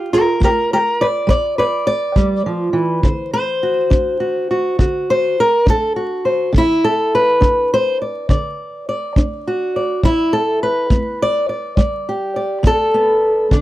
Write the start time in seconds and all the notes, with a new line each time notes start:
Already playing: F4 G4
0.13 G4 A#4
0.40 B3, kick
0.44 G4 A#4
0.73 G4 A#4
1.01 B4 D5
1.27 G3 D5, kick
1.58 B4 D5
1.87 D5
2.16 G3, kick
2.46 F3
2.73 E3
3.03 D3 C5, kick
3.33 C5
3.63 F#4
3.90 D4, kick
4.20 F#4
4.51 F#4
4.79 D3 F#4, kick
5.10 C5
5.40 A#4
5.66 D4 A4, kick
5.96 F#4
6.25 C5
6.52 D3, kick
6.58 E4
6.84 A4
7.15 B4
7.41 D4, kick
7.74 C5
8.02 D5
8.29 D3 D5, kick
8.89 D5
9.16 D4, kick
9.47 F#4
9.76 D5
10.03 G3 E4, kick
10.33 A4
10.63 B4
10.90 B3, kick
11.22 D5
11.49 D5
11.77 G3 D5, kick
12.09 G4
12.36 D5
12.63 B3 A4, kick
12.94 B3
13.51 D3 D4, kick